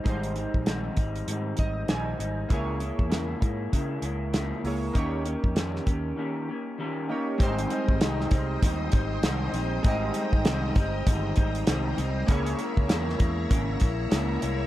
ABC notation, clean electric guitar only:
X:1
M:4/4
L:1/8
Q:"Swing 16ths" 1/4=98
K:Ab
V:1 name="Clean electric guitar"
[A,,E,G,CE] [G,CE] [A,,E,G,CE] [G,CE] [E,G,CE] [G,CE] [A,,E,G,CE] [G,CE] | [D,A,B,_F] [A,B,F] [D,A,B,F] [A,B,F] [D,A,B,F] [A,B,F] [D,A,B,F] [A,B,F] | [E,B,DG] [B,DG] [E,B,DG] [B,DG] [E,B,DG] [B,DG] [E,B,DG] [B,DG] | [A,,E,G,CE] [G,CE] [A,,E,G,CE] [G,CE] [E,G,CE] [G,CE] [A,,E,G,CE] [G,CE] |
[A,,E,G,CE] [G,CE] [A,,E,G,CE] [G,CE] [E,G,CE] [G,CE] [A,,E,G,CE] [G,CE] | [D,A,B,_F] [A,B,F] [D,A,B,F] [A,B,F] [D,A,B,F] [A,B,F] [D,A,B,F] [A,B,F] |]